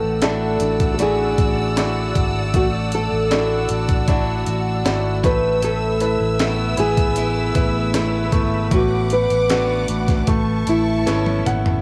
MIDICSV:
0, 0, Header, 1, 7, 480
1, 0, Start_track
1, 0, Tempo, 772201
1, 1579, Time_signature, 4, 2, 24, 8
1, 4934, Tempo, 783290
1, 7311, End_track
2, 0, Start_track
2, 0, Title_t, "String section"
2, 0, Program_c, 0, 48
2, 0, Note_on_c, 0, 74, 69
2, 0, Note_on_c, 0, 78, 63
2, 0, Note_on_c, 0, 88, 77
2, 3231, Note_off_c, 0, 88, 0
2, 3233, Note_off_c, 0, 74, 0
2, 3233, Note_off_c, 0, 78, 0
2, 3258, Note_on_c, 0, 71, 74
2, 3258, Note_on_c, 0, 76, 68
2, 3259, Note_on_c, 0, 88, 81
2, 5389, Note_off_c, 0, 76, 0
2, 5390, Note_off_c, 0, 88, 0
2, 5411, Note_on_c, 0, 78, 71
2, 5412, Note_on_c, 0, 86, 82
2, 6359, Note_off_c, 0, 78, 0
2, 6360, Note_off_c, 0, 86, 0
2, 6369, Note_on_c, 0, 81, 68
2, 6373, Note_on_c, 0, 85, 73
2, 7310, Note_off_c, 0, 71, 0
2, 7311, Note_off_c, 0, 81, 0
2, 7311, Note_off_c, 0, 85, 0
2, 7311, End_track
3, 0, Start_track
3, 0, Title_t, "Nylon-string guitar"
3, 0, Program_c, 1, 24
3, 0, Note_on_c, 1, 69, 84
3, 143, Note_off_c, 1, 69, 0
3, 150, Note_on_c, 1, 69, 81
3, 578, Note_off_c, 1, 69, 0
3, 586, Note_on_c, 1, 69, 61
3, 624, Note_off_c, 1, 69, 0
3, 634, Note_on_c, 1, 68, 80
3, 1590, Note_off_c, 1, 68, 0
3, 1593, Note_on_c, 1, 66, 74
3, 1656, Note_off_c, 1, 66, 0
3, 1832, Note_on_c, 1, 69, 78
3, 2760, Note_off_c, 1, 69, 0
3, 3265, Note_on_c, 1, 71, 80
3, 3485, Note_off_c, 1, 71, 0
3, 3507, Note_on_c, 1, 69, 90
3, 4222, Note_off_c, 1, 69, 0
3, 4224, Note_on_c, 1, 68, 97
3, 5427, Note_on_c, 1, 66, 75
3, 5451, Note_off_c, 1, 68, 0
3, 5664, Note_on_c, 1, 71, 82
3, 5665, Note_off_c, 1, 66, 0
3, 6592, Note_off_c, 1, 71, 0
3, 6622, Note_on_c, 1, 64, 76
3, 7311, Note_off_c, 1, 64, 0
3, 7311, End_track
4, 0, Start_track
4, 0, Title_t, "Grand piano"
4, 0, Program_c, 2, 0
4, 0, Control_c, 2, 64, 127
4, 0, Note_on_c, 2, 57, 57
4, 135, Note_on_c, 2, 64, 46
4, 137, Note_on_c, 2, 66, 43
4, 140, Note_on_c, 2, 74, 50
4, 604, Note_off_c, 2, 64, 0
4, 605, Note_off_c, 2, 66, 0
4, 607, Note_off_c, 2, 74, 0
4, 617, Note_on_c, 2, 64, 46
4, 620, Note_on_c, 2, 66, 45
4, 621, Note_on_c, 2, 74, 49
4, 1085, Note_off_c, 2, 64, 0
4, 1086, Note_off_c, 2, 66, 0
4, 1087, Note_off_c, 2, 74, 0
4, 1096, Note_on_c, 2, 64, 49
4, 1100, Note_on_c, 2, 66, 40
4, 1101, Note_on_c, 2, 74, 49
4, 1557, Note_off_c, 2, 57, 0
4, 1563, Note_off_c, 2, 64, 0
4, 1565, Note_off_c, 2, 66, 0
4, 1566, Note_off_c, 2, 74, 0
4, 1579, Note_on_c, 2, 57, 60
4, 2054, Note_on_c, 2, 64, 48
4, 2058, Note_on_c, 2, 66, 43
4, 2060, Note_on_c, 2, 74, 54
4, 2522, Note_off_c, 2, 64, 0
4, 2524, Note_off_c, 2, 66, 0
4, 2525, Note_off_c, 2, 74, 0
4, 2536, Note_on_c, 2, 64, 49
4, 2539, Note_on_c, 2, 66, 45
4, 2542, Note_on_c, 2, 74, 52
4, 3002, Note_off_c, 2, 64, 0
4, 3004, Note_off_c, 2, 66, 0
4, 3005, Note_off_c, 2, 74, 0
4, 3016, Note_on_c, 2, 64, 46
4, 3016, Note_on_c, 2, 66, 42
4, 3019, Note_on_c, 2, 74, 56
4, 3232, Note_off_c, 2, 57, 0
4, 3250, Note_off_c, 2, 64, 0
4, 3250, Note_off_c, 2, 66, 0
4, 3251, Note_off_c, 2, 74, 0
4, 3256, Note_on_c, 2, 57, 63
4, 3266, Control_c, 2, 64, 0
4, 3369, Control_c, 2, 64, 127
4, 3732, Note_on_c, 2, 64, 48
4, 3735, Note_on_c, 2, 69, 43
4, 3738, Note_on_c, 2, 71, 57
4, 4198, Note_off_c, 2, 64, 0
4, 4199, Note_off_c, 2, 69, 0
4, 4201, Note_off_c, 2, 71, 0
4, 4208, Note_on_c, 2, 64, 52
4, 4213, Note_on_c, 2, 71, 57
4, 4677, Note_off_c, 2, 64, 0
4, 4680, Note_off_c, 2, 71, 0
4, 4690, Note_on_c, 2, 64, 53
4, 4694, Note_on_c, 2, 71, 57
4, 5145, Note_off_c, 2, 57, 0
4, 5154, Note_off_c, 2, 64, 0
4, 5156, Note_off_c, 2, 71, 0
4, 5170, Note_on_c, 2, 57, 69
4, 5398, Note_off_c, 2, 57, 0
4, 5408, Note_on_c, 2, 57, 58
4, 5419, Control_c, 2, 64, 0
4, 5513, Control_c, 2, 64, 127
4, 5887, Note_on_c, 2, 62, 47
4, 5888, Note_on_c, 2, 66, 44
4, 5891, Note_on_c, 2, 71, 50
4, 6343, Note_off_c, 2, 57, 0
4, 6353, Note_off_c, 2, 62, 0
4, 6354, Note_off_c, 2, 66, 0
4, 6355, Note_off_c, 2, 71, 0
4, 6368, Note_on_c, 2, 57, 68
4, 6375, Control_c, 2, 64, 0
4, 6489, Control_c, 2, 64, 127
4, 6847, Note_on_c, 2, 69, 44
4, 6850, Note_on_c, 2, 71, 42
4, 6851, Note_on_c, 2, 73, 64
4, 7093, Note_on_c, 2, 78, 63
4, 7309, Note_off_c, 2, 57, 0
4, 7311, Note_off_c, 2, 69, 0
4, 7311, Note_off_c, 2, 71, 0
4, 7311, Note_off_c, 2, 73, 0
4, 7311, Note_off_c, 2, 78, 0
4, 7311, End_track
5, 0, Start_track
5, 0, Title_t, "Steel-string acoustic guitar"
5, 0, Program_c, 3, 25
5, 0, Note_on_c, 3, 45, 68
5, 134, Note_on_c, 3, 57, 55
5, 139, Note_on_c, 3, 62, 56
5, 142, Note_on_c, 3, 66, 61
5, 369, Note_off_c, 3, 62, 0
5, 377, Note_on_c, 3, 62, 54
5, 614, Note_off_c, 3, 62, 0
5, 615, Note_off_c, 3, 57, 0
5, 617, Note_off_c, 3, 66, 0
5, 618, Note_on_c, 3, 57, 56
5, 621, Note_on_c, 3, 62, 53
5, 624, Note_on_c, 3, 66, 61
5, 850, Note_off_c, 3, 66, 0
5, 858, Note_on_c, 3, 66, 55
5, 1096, Note_off_c, 3, 62, 0
5, 1097, Note_off_c, 3, 57, 0
5, 1099, Note_off_c, 3, 66, 0
5, 1100, Note_on_c, 3, 57, 52
5, 1103, Note_on_c, 3, 62, 54
5, 1107, Note_on_c, 3, 66, 57
5, 1580, Note_off_c, 3, 45, 0
5, 2052, Note_off_c, 3, 62, 0
5, 2054, Note_off_c, 3, 57, 0
5, 2056, Note_on_c, 3, 57, 59
5, 2057, Note_off_c, 3, 66, 0
5, 2060, Note_on_c, 3, 62, 60
5, 2064, Note_on_c, 3, 66, 67
5, 2287, Note_off_c, 3, 62, 0
5, 2294, Note_on_c, 3, 62, 58
5, 2529, Note_off_c, 3, 62, 0
5, 2530, Note_off_c, 3, 57, 0
5, 2533, Note_on_c, 3, 57, 59
5, 2534, Note_off_c, 3, 66, 0
5, 2537, Note_on_c, 3, 62, 53
5, 2541, Note_on_c, 3, 66, 62
5, 2767, Note_off_c, 3, 66, 0
5, 2775, Note_on_c, 3, 66, 56
5, 3009, Note_off_c, 3, 62, 0
5, 3010, Note_off_c, 3, 57, 0
5, 3013, Note_on_c, 3, 57, 55
5, 3014, Note_off_c, 3, 66, 0
5, 3016, Note_on_c, 3, 62, 53
5, 3021, Note_on_c, 3, 66, 57
5, 3253, Note_on_c, 3, 45, 68
5, 3305, Note_off_c, 3, 62, 0
5, 3307, Note_off_c, 3, 66, 0
5, 3488, Note_off_c, 3, 45, 0
5, 3495, Note_on_c, 3, 45, 77
5, 3970, Note_off_c, 3, 57, 0
5, 3972, Note_on_c, 3, 57, 63
5, 3976, Note_on_c, 3, 59, 61
5, 3980, Note_on_c, 3, 64, 66
5, 4211, Note_off_c, 3, 59, 0
5, 4213, Note_on_c, 3, 59, 59
5, 4446, Note_off_c, 3, 57, 0
5, 4453, Note_off_c, 3, 64, 0
5, 4453, Note_on_c, 3, 57, 55
5, 4454, Note_off_c, 3, 59, 0
5, 4456, Note_on_c, 3, 59, 63
5, 4460, Note_on_c, 3, 64, 67
5, 4687, Note_off_c, 3, 64, 0
5, 4695, Note_on_c, 3, 64, 60
5, 4926, Note_off_c, 3, 57, 0
5, 4934, Note_off_c, 3, 64, 0
5, 4934, Note_on_c, 3, 57, 59
5, 4935, Note_off_c, 3, 59, 0
5, 4937, Note_on_c, 3, 59, 55
5, 4941, Note_on_c, 3, 64, 65
5, 5402, Note_off_c, 3, 45, 0
5, 5410, Note_on_c, 3, 45, 70
5, 5458, Note_off_c, 3, 57, 0
5, 5462, Note_off_c, 3, 64, 0
5, 5888, Note_on_c, 3, 57, 61
5, 5889, Note_off_c, 3, 59, 0
5, 5891, Note_on_c, 3, 59, 63
5, 5895, Note_on_c, 3, 66, 69
5, 6120, Note_off_c, 3, 59, 0
5, 6127, Note_on_c, 3, 59, 58
5, 6368, Note_off_c, 3, 45, 0
5, 6416, Note_off_c, 3, 59, 0
5, 6419, Note_off_c, 3, 66, 0
5, 6610, Note_on_c, 3, 64, 55
5, 6847, Note_off_c, 3, 57, 0
5, 6850, Note_on_c, 3, 59, 51
5, 6854, Note_on_c, 3, 61, 51
5, 6855, Note_off_c, 3, 64, 0
5, 6857, Note_on_c, 3, 64, 61
5, 7311, Note_off_c, 3, 59, 0
5, 7311, Note_off_c, 3, 61, 0
5, 7311, Note_off_c, 3, 64, 0
5, 7311, End_track
6, 0, Start_track
6, 0, Title_t, "Fingered electric bass"
6, 0, Program_c, 4, 33
6, 16, Note_on_c, 4, 33, 74
6, 353, Note_off_c, 4, 33, 0
6, 376, Note_on_c, 4, 33, 82
6, 834, Note_off_c, 4, 33, 0
6, 858, Note_on_c, 4, 33, 76
6, 1315, Note_off_c, 4, 33, 0
6, 1339, Note_on_c, 4, 32, 81
6, 1562, Note_off_c, 4, 32, 0
6, 1578, Note_on_c, 4, 33, 91
6, 1913, Note_off_c, 4, 33, 0
6, 1939, Note_on_c, 4, 33, 80
6, 2274, Note_off_c, 4, 33, 0
6, 2299, Note_on_c, 4, 33, 80
6, 2753, Note_off_c, 4, 33, 0
6, 2779, Note_on_c, 4, 33, 91
6, 3002, Note_off_c, 4, 33, 0
6, 3018, Note_on_c, 4, 32, 88
6, 3241, Note_off_c, 4, 32, 0
6, 3256, Note_on_c, 4, 33, 92
6, 3830, Note_off_c, 4, 33, 0
6, 3855, Note_on_c, 4, 33, 86
6, 4189, Note_off_c, 4, 33, 0
6, 4214, Note_on_c, 4, 33, 93
6, 4670, Note_off_c, 4, 33, 0
6, 4695, Note_on_c, 4, 33, 87
6, 5147, Note_off_c, 4, 33, 0
6, 5169, Note_on_c, 4, 32, 79
6, 5393, Note_off_c, 4, 32, 0
6, 5409, Note_on_c, 4, 33, 90
6, 5745, Note_off_c, 4, 33, 0
6, 5772, Note_on_c, 4, 33, 79
6, 6105, Note_off_c, 4, 33, 0
6, 6129, Note_on_c, 4, 33, 88
6, 6352, Note_off_c, 4, 33, 0
6, 6367, Note_on_c, 4, 33, 94
6, 6592, Note_off_c, 4, 33, 0
6, 6610, Note_on_c, 4, 33, 83
6, 6835, Note_off_c, 4, 33, 0
6, 6852, Note_on_c, 4, 32, 82
6, 7077, Note_off_c, 4, 32, 0
6, 7096, Note_on_c, 4, 32, 78
6, 7311, Note_off_c, 4, 32, 0
6, 7311, End_track
7, 0, Start_track
7, 0, Title_t, "Drums"
7, 135, Note_on_c, 9, 42, 81
7, 138, Note_on_c, 9, 38, 92
7, 197, Note_off_c, 9, 42, 0
7, 201, Note_off_c, 9, 38, 0
7, 372, Note_on_c, 9, 42, 67
7, 434, Note_off_c, 9, 42, 0
7, 497, Note_on_c, 9, 42, 51
7, 498, Note_on_c, 9, 36, 74
7, 559, Note_off_c, 9, 42, 0
7, 560, Note_off_c, 9, 36, 0
7, 615, Note_on_c, 9, 42, 81
7, 677, Note_off_c, 9, 42, 0
7, 859, Note_on_c, 9, 36, 81
7, 859, Note_on_c, 9, 42, 59
7, 921, Note_off_c, 9, 42, 0
7, 922, Note_off_c, 9, 36, 0
7, 1100, Note_on_c, 9, 42, 91
7, 1101, Note_on_c, 9, 38, 97
7, 1162, Note_off_c, 9, 42, 0
7, 1163, Note_off_c, 9, 38, 0
7, 1339, Note_on_c, 9, 36, 74
7, 1340, Note_on_c, 9, 42, 57
7, 1401, Note_off_c, 9, 36, 0
7, 1402, Note_off_c, 9, 42, 0
7, 1578, Note_on_c, 9, 42, 70
7, 1579, Note_on_c, 9, 36, 90
7, 1640, Note_off_c, 9, 42, 0
7, 1641, Note_off_c, 9, 36, 0
7, 1814, Note_on_c, 9, 42, 60
7, 1876, Note_off_c, 9, 42, 0
7, 2057, Note_on_c, 9, 42, 87
7, 2061, Note_on_c, 9, 38, 92
7, 2120, Note_off_c, 9, 42, 0
7, 2124, Note_off_c, 9, 38, 0
7, 2292, Note_on_c, 9, 42, 71
7, 2354, Note_off_c, 9, 42, 0
7, 2416, Note_on_c, 9, 42, 49
7, 2417, Note_on_c, 9, 36, 81
7, 2478, Note_off_c, 9, 42, 0
7, 2480, Note_off_c, 9, 36, 0
7, 2534, Note_on_c, 9, 42, 87
7, 2536, Note_on_c, 9, 36, 84
7, 2596, Note_off_c, 9, 42, 0
7, 2599, Note_off_c, 9, 36, 0
7, 2775, Note_on_c, 9, 42, 60
7, 2837, Note_off_c, 9, 42, 0
7, 3019, Note_on_c, 9, 38, 100
7, 3019, Note_on_c, 9, 42, 88
7, 3081, Note_off_c, 9, 38, 0
7, 3081, Note_off_c, 9, 42, 0
7, 3257, Note_on_c, 9, 36, 90
7, 3258, Note_on_c, 9, 42, 58
7, 3319, Note_off_c, 9, 36, 0
7, 3320, Note_off_c, 9, 42, 0
7, 3497, Note_on_c, 9, 42, 67
7, 3559, Note_off_c, 9, 42, 0
7, 3732, Note_on_c, 9, 42, 63
7, 3794, Note_off_c, 9, 42, 0
7, 3974, Note_on_c, 9, 42, 91
7, 3978, Note_on_c, 9, 38, 101
7, 4036, Note_off_c, 9, 42, 0
7, 4040, Note_off_c, 9, 38, 0
7, 4210, Note_on_c, 9, 42, 70
7, 4272, Note_off_c, 9, 42, 0
7, 4334, Note_on_c, 9, 36, 75
7, 4335, Note_on_c, 9, 42, 52
7, 4396, Note_off_c, 9, 36, 0
7, 4397, Note_off_c, 9, 42, 0
7, 4449, Note_on_c, 9, 42, 86
7, 4511, Note_off_c, 9, 42, 0
7, 4693, Note_on_c, 9, 42, 59
7, 4694, Note_on_c, 9, 36, 81
7, 4755, Note_off_c, 9, 42, 0
7, 4756, Note_off_c, 9, 36, 0
7, 4935, Note_on_c, 9, 42, 93
7, 4936, Note_on_c, 9, 38, 96
7, 4997, Note_off_c, 9, 38, 0
7, 4997, Note_off_c, 9, 42, 0
7, 5170, Note_on_c, 9, 36, 77
7, 5170, Note_on_c, 9, 42, 55
7, 5231, Note_off_c, 9, 36, 0
7, 5232, Note_off_c, 9, 42, 0
7, 5409, Note_on_c, 9, 42, 71
7, 5410, Note_on_c, 9, 36, 96
7, 5470, Note_off_c, 9, 42, 0
7, 5471, Note_off_c, 9, 36, 0
7, 5647, Note_on_c, 9, 42, 60
7, 5708, Note_off_c, 9, 42, 0
7, 5771, Note_on_c, 9, 42, 44
7, 5832, Note_off_c, 9, 42, 0
7, 5889, Note_on_c, 9, 42, 83
7, 5893, Note_on_c, 9, 38, 98
7, 5950, Note_off_c, 9, 42, 0
7, 5954, Note_off_c, 9, 38, 0
7, 6126, Note_on_c, 9, 42, 73
7, 6187, Note_off_c, 9, 42, 0
7, 6248, Note_on_c, 9, 36, 79
7, 6248, Note_on_c, 9, 42, 48
7, 6251, Note_on_c, 9, 38, 33
7, 6309, Note_off_c, 9, 36, 0
7, 6309, Note_off_c, 9, 42, 0
7, 6313, Note_off_c, 9, 38, 0
7, 6364, Note_on_c, 9, 42, 90
7, 6366, Note_on_c, 9, 36, 82
7, 6425, Note_off_c, 9, 42, 0
7, 6428, Note_off_c, 9, 36, 0
7, 6608, Note_on_c, 9, 42, 65
7, 6669, Note_off_c, 9, 42, 0
7, 6853, Note_on_c, 9, 42, 89
7, 6854, Note_on_c, 9, 38, 56
7, 6914, Note_off_c, 9, 42, 0
7, 6915, Note_off_c, 9, 38, 0
7, 6972, Note_on_c, 9, 48, 56
7, 7033, Note_off_c, 9, 48, 0
7, 7095, Note_on_c, 9, 42, 54
7, 7095, Note_on_c, 9, 45, 77
7, 7156, Note_off_c, 9, 42, 0
7, 7156, Note_off_c, 9, 45, 0
7, 7214, Note_on_c, 9, 43, 86
7, 7275, Note_off_c, 9, 43, 0
7, 7311, End_track
0, 0, End_of_file